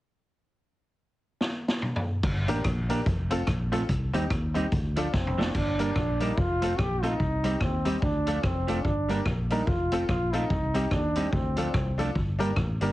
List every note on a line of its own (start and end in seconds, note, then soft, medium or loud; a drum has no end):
1.41 snare medium
1.69 snare medium
1.82 mid tom medium
1.96 floor tom medium
2.23 2.45 G1 loud
2.23 kick medium
2.23 crash medium
2.48 2.62 A1 medium
2.48 2.58 A#3 medium
2.48 2.61 D4 medium
2.48 2.58 D4 medium
2.48 2.61 G4 medium
2.48 2.59 G4 medium
2.48 2.61 A#4 loud
2.48 closed hi-hat medium
2.64 3.00 A#1 loud
2.64 kick loud
2.64 cross-stick loud
2.64 closed hi-hat medium
2.89 3.00 A#3 medium
2.89 3.02 D4 medium
2.89 3.00 D4 medium
2.89 3.02 G4 medium
2.89 3.00 G4 medium
2.89 3.02 A#4 medium
2.89 closed hi-hat medium
3.06 3.42 F1 medium
3.06 kick loud
3.06 closed hi-hat medium
3.31 3.41 A3 medium
3.31 3.43 C4 medium
3.31 3.41 C4 medium
3.31 3.44 F4 medium
3.31 3.42 F4 medium
3.31 3.44 A4 loud
3.31 closed hi-hat loud
3.47 3.83 A#1 loud
3.47 3.53 F4 soft
3.47 3.53 A4 soft
3.47 kick medium
3.47 cross-stick medium
3.47 closed hi-hat medium
3.72 3.82 A3 medium
3.72 3.85 C4 medium
3.72 3.82 C4 loud
3.72 3.85 F4 medium
3.72 3.83 F4 loud
3.72 3.85 A4 loud
3.72 closed hi-hat medium
3.89 4.10 C2 loud
3.89 kick medium
3.89 closed hi-hat medium
4.13 4.28 D#2 medium
4.13 4.24 G3 medium
4.13 4.26 C4 medium
4.13 4.24 C4 loud
4.13 4.26 D#4 medium
4.13 4.24 D#4 loud
4.13 4.27 G4 loud
4.13 closed hi-hat medium
4.30 4.66 D#2 medium
4.30 kick loud
4.30 cross-stick medium
4.30 closed hi-hat medium
4.54 4.65 G3 medium
4.54 4.67 C4 medium
4.54 4.65 C4 medium
4.54 4.67 D#4 medium
4.54 4.66 D#4 medium
4.54 4.68 G4 medium
4.54 closed hi-hat medium
4.71 5.07 D2 medium
4.71 kick loud
4.71 closed hi-hat medium
4.96 5.06 F3 medium
4.96 5.07 A3 medium
4.96 5.09 D4 loud
4.96 5.07 D4 medium
4.96 5.09 F4 medium
4.96 5.09 A4 loud
4.96 closed hi-hat loud
5.13 5.49 F1 medium
5.13 5.56 C4 medium
5.13 5.18 F4 soft
5.13 5.18 A4 soft
5.13 kick loud
5.13 snare soft
5.27 mid tom medium
5.38 5.48 F3 medium
5.38 5.48 A3 loud
5.38 5.50 D4 medium
5.38 5.48 D4 loud
5.38 5.51 F4 medium
5.38 5.51 A4 medium
5.38 snare loud
5.54 5.90 G1 loud
5.54 6.23 D4 loud
5.54 kick medium
5.54 crash medium
5.79 5.89 G3 medium
5.79 5.89 A#3 medium
5.79 5.92 D4 loud
5.79 5.90 D4 medium
5.79 5.92 G4 medium
5.79 5.92 A#4 loud
5.79 closed hi-hat medium
5.95 6.31 A#1 medium
5.95 kick medium
5.95 cross-stick medium
6.20 6.30 G3 medium
6.20 6.31 A#3 medium
6.20 6.33 D4 medium
6.20 6.31 D4 medium
6.20 6.40 D#4 medium
6.20 6.33 G4 medium
6.20 6.33 A#4 medium
6.20 closed hi-hat medium
6.37 6.72 F1 medium
6.37 6.81 F4 loud
6.37 kick loud
6.62 6.72 A3 medium
6.62 6.74 C4 medium
6.62 6.72 C4 medium
6.62 6.75 F4 medium
6.62 6.73 F4 medium
6.62 6.75 A4 loud
6.62 closed hi-hat loud
6.78 7.14 A#1 medium
6.78 7.06 G4 loud
6.78 kick loud
6.78 cross-stick loud
7.03 7.13 A3 medium
7.03 7.15 C4 medium
7.03 7.13 C4 medium
7.03 7.63 D#4 loud
7.03 7.16 F4 medium
7.03 7.14 F4 loud
7.03 7.16 A4 medium
7.03 closed hi-hat medium
7.20 7.55 C2 loud
7.20 kick medium
7.44 7.54 G3 medium
7.44 7.57 C4 loud
7.44 7.55 C4 medium
7.44 7.57 D#4 medium
7.44 7.55 D#4 medium
7.44 7.57 G4 loud
7.44 closed hi-hat medium
7.60 7.96 D#2 medium
7.60 8.04 C4 medium
7.60 kick loud
7.60 cross-stick loud
7.85 7.95 G3 medium
7.85 7.98 C4 medium
7.85 7.96 C4 loud
7.85 7.98 D#4 medium
7.85 7.96 D#4 medium
7.85 7.98 G4 medium
7.85 closed hi-hat medium
8.02 8.37 D2 loud
8.02 8.46 D4 loud
8.02 kick loud
8.26 8.37 F3 medium
8.26 8.37 A3 medium
8.26 8.39 D4 medium
8.26 8.38 D4 medium
8.26 8.39 F4 medium
8.26 8.40 A4 loud
8.26 closed hi-hat medium
8.43 8.79 F1 loud
8.43 8.86 C4 medium
8.43 kick loud
8.43 cross-stick loud
8.67 8.78 F3 medium
8.67 8.78 A3 medium
8.67 8.81 D4 medium
8.67 8.78 D4 medium
8.67 8.81 F4 medium
8.67 8.81 A4 medium
8.67 closed hi-hat medium
8.85 9.20 G1 loud
8.85 9.21 D4 loud
8.85 kick medium
9.09 9.19 G3 medium
9.09 9.20 A#3 medium
9.09 9.22 D4 medium
9.09 9.20 D4 loud
9.09 9.22 G4 medium
9.09 9.23 A#4 loud
9.09 closed hi-hat medium
9.26 9.61 A#1 medium
9.26 9.31 G4 soft
9.26 9.31 A#4 soft
9.26 kick medium
9.26 cross-stick medium
9.50 9.61 G3 medium
9.50 9.61 A#3 medium
9.50 9.63 D4 medium
9.50 9.62 D4 medium
9.50 9.69 D#4 medium
9.50 9.64 G4 medium
9.50 9.64 A#4 loud
9.50 closed hi-hat medium
9.67 10.03 F1 medium
9.67 10.09 F4 medium
9.67 kick loud
9.92 10.02 A3 medium
9.92 10.05 C4 medium
9.92 10.02 C4 medium
9.92 10.05 F4 medium
9.92 10.03 F4 medium
9.92 10.05 A4 loud
9.92 closed hi-hat loud
10.09 10.44 A#1 medium
10.09 10.35 F4 loud
10.09 kick loud
10.09 cross-stick medium
10.33 10.43 A3 medium
10.33 10.46 C4 medium
10.33 10.44 C4 medium
10.33 10.94 D#4 medium
10.33 10.46 F4 medium
10.33 10.44 F4 medium
10.33 10.46 A4 loud
10.33 closed hi-hat medium
10.50 10.85 C2 loud
10.50 kick loud
10.74 10.84 G3 medium
10.74 10.87 C4 medium
10.74 10.85 C4 medium
10.74 10.87 D#4 medium
10.74 10.85 D#4 medium
10.74 10.88 G4 loud
10.74 closed hi-hat medium
10.91 11.27 D#2 medium
10.91 11.34 D4 medium
10.91 10.96 D#4 soft
10.91 10.96 G4 soft
10.91 kick loud
10.91 cross-stick loud
11.16 11.26 G3 medium
11.16 11.29 C4 medium
11.16 11.26 C4 medium
11.16 11.29 D#4 medium
11.16 11.27 D#4 loud
11.16 11.29 G4 medium
11.16 closed hi-hat medium
11.33 11.68 D2 loud
11.33 11.99 C4 medium
11.33 kick loud
11.57 11.68 F3 medium
11.57 11.68 A3 medium
11.57 11.70 D4 medium
11.57 11.68 D4 medium
11.57 11.70 F4 medium
11.57 11.70 A4 loud
11.57 closed hi-hat loud
11.74 12.09 C2 medium
11.74 kick loud
11.74 cross-stick loud
11.98 12.09 F3 medium
11.98 12.09 A3 medium
11.98 12.11 D4 medium
11.98 12.10 D4 medium
11.98 12.11 F4 medium
11.98 12.11 A4 loud
11.98 closed hi-hat medium
12.16 12.51 G1 loud
12.16 kick medium
12.39 12.50 G3 medium
12.39 12.51 A#3 medium
12.39 12.52 D4 loud
12.39 12.51 D4 medium
12.39 12.52 G4 medium
12.39 12.53 A#4 loud
12.39 closed hi-hat medium
12.56 12.78 A1 medium
12.56 12.62 G4 soft
12.56 12.62 A#4 soft
12.56 kick medium
12.56 cross-stick medium
12.81 12.92 G1 medium
12.81 12.92 G3 medium
12.81 12.92 A#3 medium
12.81 12.92 D4 medium
12.81 12.92 G4 medium
12.81 12.92 A#4 medium
12.81 closed hi-hat medium